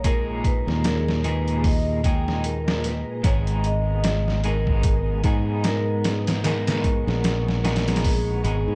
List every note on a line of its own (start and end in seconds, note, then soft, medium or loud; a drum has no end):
0.00 0.63 A#1 medium
0.00 8.75 G#4 medium
0.00 8.75 D#5 medium
0.04 1.21 A#2 medium
0.04 1.20 G#3 medium
0.04 1.21 D#4 medium
0.04 1.21 G#4 medium
0.04 0.24 A#4 medium
0.04 3.21 A#5 medium
0.04 kick loud
0.04 closed hi-hat medium
0.44 0.64 B4 medium
0.44 kick medium
0.44 closed hi-hat medium
0.67 3.03 D#2 medium
0.67 snare soft
0.84 0.94 A#4 medium
0.84 snare loud
0.84 closed hi-hat medium
0.94 1.02 G#4 medium
1.03 1.26 A#4 medium
1.08 snare medium
1.24 2.00 A#2 medium
1.24 2.00 G#3 medium
1.24 2.01 D#4 medium
1.24 2.01 G#4 loud
1.24 1.66 B4 medium
1.24 closed hi-hat medium
1.48 closed hi-hat soft
1.64 2.06 D#5 medium
1.64 kick loud
1.64 open hi-hat medium
2.04 3.20 A#2 medium
2.04 3.20 G#3 medium
2.04 3.21 D#4 medium
2.04 3.21 G#4 medium
2.04 2.46 G5 medium
2.04 kick medium
2.04 closed hi-hat medium
2.28 snare soft
2.44 2.86 A#4 medium
2.44 closed hi-hat medium
2.68 snare loud
2.84 3.26 B4 medium
2.84 snare soft
2.84 closed hi-hat medium
3.23 5.26 G#1 loud
3.23 4.40 G#3 medium
3.23 8.75 B3 medium
3.23 4.40 B3 medium
3.23 4.41 D#4 medium
3.23 4.41 G#4 loud
3.23 3.43 C#5 medium
3.23 6.41 G#5 medium
3.23 kick loud
3.23 closed hi-hat medium
3.47 closed hi-hat soft
3.64 4.48 D#5 medium
3.64 closed hi-hat medium
4.04 snare loud
4.04 closed hi-hat medium
4.28 snare soft
4.44 5.20 G#3 medium
4.44 5.21 B3 medium
4.44 5.21 D#4 medium
4.44 5.21 G#4 loud
4.44 5.21 A#4 medium
4.44 closed hi-hat medium
4.67 kick medium
4.83 kick loud
4.83 closed hi-hat medium
5.24 7.03 G#2 medium
5.24 6.40 G#3 medium
5.24 6.40 B3 medium
5.24 6.41 D#4 medium
5.24 6.41 G#4 medium
5.24 kick medium
5.24 closed hi-hat medium
5.64 6.07 A#4 loud
5.64 snare loud
5.64 closed hi-hat medium
6.04 6.24 B4 loud
6.04 snare loud
6.04 closed hi-hat medium
6.27 snare loud
6.27 closed hi-hat medium
6.44 7.60 G#3 medium
6.44 7.60 B3 medium
6.44 7.61 D#4 medium
6.44 7.61 G#4 medium
6.44 8.10 A#4 loud
6.44 8.75 C#6 medium
6.44 snare loud
6.44 closed hi-hat medium
6.67 snare loud
6.67 closed hi-hat medium
6.84 kick medium
6.84 closed hi-hat medium
7.07 8.44 A#1 medium
7.07 snare medium
7.24 snare loud
7.24 closed hi-hat medium
7.48 snare medium
7.64 8.40 G#3 medium
7.64 8.40 B3 medium
7.64 8.40 D#4 medium
7.64 8.41 G#4 loud
7.64 snare medium
7.64 closed hi-hat medium
7.76 snare medium
7.76 closed hi-hat medium
7.88 snare medium
7.88 closed hi-hat medium
7.96 snare medium
7.96 closed hi-hat medium
8.04 8.75 G#4 medium
8.04 kick loud
8.04 open hi-hat medium
8.44 8.65 G#1 loud
8.44 8.75 G#3 medium
8.44 8.75 B3 medium
8.44 8.75 D#4 medium
8.44 8.75 G#4 medium
8.44 closed hi-hat medium
8.68 8.75 G#2 medium